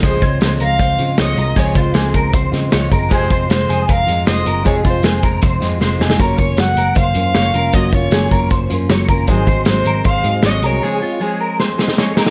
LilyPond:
<<
  \new Staff \with { instrumentName = "Violin" } { \time 4/4 \key des \major \tempo 4 = 156 c''4 c''8 f''4. ees''4 | des''8 c''4 r2 r8 | c''4 c''4 f''4 ees''4 | des''8 c''4 r2 r8 |
des''4 ges''4 f''2 | ees''8 des''2 r4. | c''4 c''4 f''4 ees''8 des''8~ | des''4. r2 r8 | }
  \new Staff \with { instrumentName = "Clean electric guitar" } { \time 4/4 \key des \major aes'8 des''4 bes'8 c''4 des''8 bes'8 | aes'8 f'8 aes'8 bes'8 c''4 des''8 bes'8 | aes'8 c''4 aes'8 bes'4 c''8 bes'8 | aes'8 f'8 aes'8 bes'8 c''4 c''8 aes'8 |
bes'8 des''4 bes'8 c''4 des''8 bes'8 | ges'8 f'8 aes'8 bes'8 c''4 des''8 bes'8 | aes'8 c''4 bes'8 c''4 des''8 bes'8 | aes'8 f'8 aes'8 bes'8 c''4 des''8 bes'8 | }
  \new Staff \with { instrumentName = "Steel-string acoustic guitar" } { \time 4/4 \key des \major <des f aes c' f'>8 <aes c' f'>8 <f aes c' f'>4. <aes c' f'>8 <f aes c' f'>8 <aes c' f'>8 | <des f aes c' f'>8 <aes c' f'>8 <f aes c' f'>4. <aes c' f'>8 <f aes c' f'>8 <aes c' f'>8 | <f, c f aes c' f'>8 <f aes c' f'>8 <f aes c' f'>4. <f aes c' f'>8 <f aes c' f'>8 <f aes c' f'>8 | <f, c f aes c' f'>8 <f aes c' f'>8 <f aes c' f'>4. <f aes c' f'>8 <f aes c' f'>8 <f aes c' f'>8 |
<ges bes des' f'>8 <bes des' f'>8 <ges bes des'>4. <bes des' f'>8 <ges bes des' f'>8 <bes des' f'>8 | <ges bes des' f'>8 <bes des' f'>8 <ges bes des' f'>4. <bes des' f'>8 <ges bes des' f'>8 <bes des' f'>8 | <aes, ees ges aes c' aes'>8 <ges aes c' aes'>8 <ges aes c' aes'>4. <ges aes c' aes'>8 <ges aes c' aes'>8 <ges aes c' aes'>8 | <des f aes c' aes'>8 <aes c' aes'>8 <f aes c' aes'>4. <aes c' aes'>8 <f aes c' aes'>8 <aes c' aes'>8 | }
  \new Staff \with { instrumentName = "Picked electric bass" } { \clef bass \time 4/4 \key des \major des,8 des,8 des,8 des,8 des,8 des8 des,8 c,8 | des,8 des,8 des,8 des,8 des,8 des8 des,8 ges,,8 | f,,8 f,,8 f,,8 f,,8 f,,8 f,8 f,,8 ges,,8 | f,,8 f,,8 f,,8 f,,8 f,,8 f,8 f,,8 f,,8 |
r8 ges,,8 ges,,8 ges,,8 ges,,8 ges,8 ges,,8 f,,8 | ges,,8 ges,,8 ges,,8 ges,,8 ges,,8 ges,8 ges,,8 ges,,8 | aes,,8 aes,,8 aes,,8 aes,,8 aes,,8 aes,8 aes,,8 c,8 | r1 | }
  \new DrumStaff \with { instrumentName = "Drums" } \drummode { \time 4/4 <hh bd>8 <hh bd>8 <hh sn>8 hh8 <hh bd>8 hh8 <hh sn>8 hh8 | <hh bd>8 <hh bd>8 <hh sn>8 <hh bd>8 <hh bd>8 <hh sn>8 <hh sn>8 <hh bd>8 | <hh bd>8 <hh bd>8 <hh sn>8 hh8 <hh bd>8 hh8 <hh sn>8 hh8 | <hh bd>8 <hh bd>8 <hh sn>8 <hh bd>8 <hh bd>8 <hh sn>8 sn8 sn16 sn16 |
<hh bd>8 <hh bd>8 <hh sn>8 hh8 <hh bd>8 hh8 <hh sn>8 hh8 | <hh bd>8 <hh bd>8 <hh sn>8 <hh bd>8 <hh bd>8 hh8 <hh sn>8 <hh bd>8 | <hh bd>8 <hh bd>8 <hh sn>8 hh8 <hh bd>8 hh8 <hh sn>8 hh8 | r4 r4 sn8 sn16 sn16 sn8 sn16 sn16 | }
>>